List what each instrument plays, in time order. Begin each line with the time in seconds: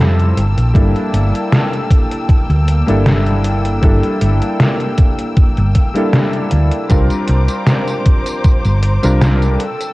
Already playing: fingered electric bass F2, electric grand piano G3 C4 E4 F4 A4, string section G4 A5 E6
0.20 closed hi-hat
0.36 fingered electric bass G1, string section A#3 G5 A5, closed hi-hat
0.57 fingered electric bass A#1, closed hi-hat
0.74 fingered electric bass G1, electric grand piano G3 A#3 D4 E4 A4, kick, closed hi-hat
0.96 closed hi-hat
1.13 fingered electric bass G1, closed hi-hat
1.35 closed hi-hat
1.52 snare, closed hi-hat
1.73 closed hi-hat
1.91 kick, closed hi-hat
2.11 closed hi-hat
2.29 muted fingered electric bass stroke, kick, closed hi-hat
2.50 fingered electric bass D2, closed hi-hat
2.68 closed hi-hat
2.87 fingered electric bass G1, electric grand piano G3 A#3 D4 E4 A4, closed hi-hat
3.06 snare, closed hi-hat
3.27 closed hi-hat
3.44 closed hi-hat
3.65 closed hi-hat
3.81 fingered electric bass G1, electric grand piano G3 A#3 D4 E4 A4, kick, closed hi-hat
4.03 closed hi-hat
4.21 fingered electric bass G1, closed hi-hat
4.42 closed hi-hat
4.60 snare, closed hi-hat
4.80 closed hi-hat
4.98 kick, closed hi-hat
5.18 closed hi-hat
5.37 kick, closed hi-hat
5.57 fingered electric bass G1, closed hi-hat
5.75 kick, closed hi-hat
5.94 electric grand piano G3 A#3 D4 E4 A4, closed hi-hat
6.13 snare, closed hi-hat
6.33 closed hi-hat
6.51 fingered electric bass D2, closed hi-hat
6.71 closed hi-hat
6.89 fingered electric bass C2, electric grand piano G3 C4 D4 F4 A#4, string section C5 A#5 D6, kick, closed hi-hat, tambourine
7.10 closed hi-hat, tambourine
7.28 fingered electric bass C2, closed hi-hat
7.48 closed hi-hat, tambourine
7.67 snare, closed hi-hat, tambourine
7.88 closed hi-hat, tambourine
8.06 kick, closed hi-hat
8.26 closed hi-hat, tambourine
8.44 muted fingered electric bass stroke, kick, closed hi-hat, tambourine
8.65 fingered electric bass G1, closed hi-hat, tambourine
8.83 closed hi-hat
9.03 fingered electric bass C2, electric grand piano G3 C4 D4 F4 A#4, closed hi-hat, tambourine
9.21 snare, closed hi-hat, tambourine
9.42 closed hi-hat, tambourine
9.60 string section A4 G5 E6, closed hi-hat
9.81 closed hi-hat, tambourine